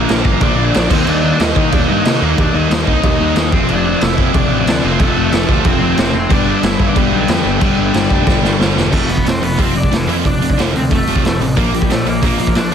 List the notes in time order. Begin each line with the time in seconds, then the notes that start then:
Already playing: A#2 F3 A#3 A#4
0.08 A#1 A#2 D3 F3 A#3 D4, snare, crash
0.24 G1 A#2 D3 F3 A#3 D4 A#4, kick
0.40 A#1 A#2 D3 F3 A#3 D4 D5, kick, crash
0.56 A#1 A#2 D3 F3 A#3 D4
0.74 A#1 A#2 D3 F3 A#3 D4, snare, crash
0.89 D#2 D#3 G3 A#3 C4 D#4 C5, kick, crash
1.06 D#2 D#3 G3 A#3 D4 D#4 D5, crash
1.23 D#3 G3 A#3 D#4
1.39 D#2 D#3 G3 A#3 D#4 D#5, snare, crash
1.55 D#3 G3 A#3 D#4, kick
1.72 D#2 D#3 G3 A#3 D4 D#4 D5, kick, crash
1.88 G2 D#3 G3 A#3 D#4 D#5
2.05 C3 D#3 G3 A#3 D#4, snare, crash
2.21 D#2 D#3 G3 A#3 D#4 A#4
2.38 D#2 D#3 G3 A#3 D4 D#4 D5, kick, crash
2.53 D#2 D#3 G3 A#3 D#4 D#5
2.69 D#2 D#3 G3 A#3 D#4, snare, crash
2.86 C2 D#3 G3 A#3 D#4, kick
3.02 D#2 D#3 G3 A#3 D#4, kick, crash
3.18 D#2 D#3 G3 A#3 D#4
3.35 D#2 D#3 G3 A#3 D#4, snare, crash
3.51 F1 F2 C3 F3 A3 C4 C5, kick
3.68 F1 F2 C3 F3 A3 C4 D4 D5, crash
3.85 F2 C3 F3 A3 C4
4.01 F1 F2 C3 F3 A3 C4 E4 E5, snare, crash
4.17 F2 C3 F3 A3 C4, kick
4.34 F1 F2 C3 F3 A3 C4 D4 D5, kick, crash
4.50 A1 F2 C3 F3 A3 C4
4.67 D2 F2 C3 F3 A3 C4, snare, crash
4.82 F1 F2 C3 F3 A3 C4 C5
5.00 F1 F2 C3 F3 A3 C4 A4, kick, crash
5.17 F1 F2 C3 F3 A3 C4
5.32 F1 F2 C3 F3 A3 C4, snare, crash
5.48 D2 F2 C3 F3 A3 C4 A4, kick
5.64 F1 F2 C3 F3 A3 C4 C5, kick, crash
5.81 F1 F2 C3 F3 A3 C4
5.98 F1 F2 C3 F3 A3 C4, snare, crash
6.13 F1 F2 C3 F3 A3 C4 C5
6.30 G1 G2 D3 G3 B3 D4 D5, kick, crash
6.47 G2 D3 G3 B3 D4
6.63 G1 G2 D3 G3 B3 D4 E4 E5, snare, crash
6.79 G2 D3 G3 B3 D4, kick
6.88 D4 D5
6.94 G1 G2 D3 G3 B3 D4 G4, kick, crash
7.10 B1 G2 D3 G3 B3 D4
7.26 F2 G2 D3 G3 B3 D4, snare, crash
7.44 G1 G2 D3 G3 B3 D4
7.61 G1 G2 D3 G3 B3 D4, kick, crash
7.77 G1 G2 D3 G3 B3 D4
7.94 G1 G2 D3 G3 B3 D4, snare, crash
8.10 F1 G2 D3 G3 B3 D4, kick
8.26 G1 G2 D3 G3 B3 D4, kick, snare
8.43 G1 G2 D3 G3 B3 D4, snare
8.59 G1 G2 D3 G3 B3 D4, snare
8.76 E1 G2 D3 G3 B3 D4, snare
8.92 F1 F2 C3 F3 A3 A4, kick, crash
9.09 F1 F2 C3 B3 B4, open hi-hat
9.17 kick
9.25 F1 F2 C3 C4 C5, snare, open hi-hat
9.42 F1 F2 C3 B3 B4, open hi-hat
9.57 F1 F2 C3 F3 C4 C5, kick, open hi-hat
9.75 F1 F2 C3 D4 D5, open hi-hat
9.83 kick
9.91 F1 F2 C3 E3 E4, snare, open hi-hat
10.07 F2 C3 E3 F3 E4, open hi-hat
10.25 F1 F2 C3 D4 D5, kick, open hi-hat
10.40 F1 F2 C3, open hi-hat
10.50 kick
10.57 F1 F2 C3 F3, snare, open hi-hat
10.73 D2 F2 C3 C4, open hi-hat
10.77 C5
10.91 F1 F2 C3 A3 A4, kick, open hi-hat
11.06 F1 F2 C3 F3, open hi-hat
11.16 kick
11.22 F1 F2 C3, snare, open hi-hat
11.39 A1 F2 C3, open hi-hat
11.57 A#1 A#2 F3 A#3 A#4, kick, open hi-hat
11.72 A#1 A#2 F3 G3, open hi-hat
11.76 G4
11.82 kick
11.89 A#1 A#2 F3 A3 A4, snare, open hi-hat
12.05 A#1 A#2 F3 A#3 A#4, open hi-hat
12.22 A#1 A#2 F3 A#3 A#4, kick, open hi-hat
12.38 A#1 A#2 F3, open hi-hat
12.47 kick
12.54 A#1 A#2 F3 D4 D5, snare, open hi-hat
12.71 A#2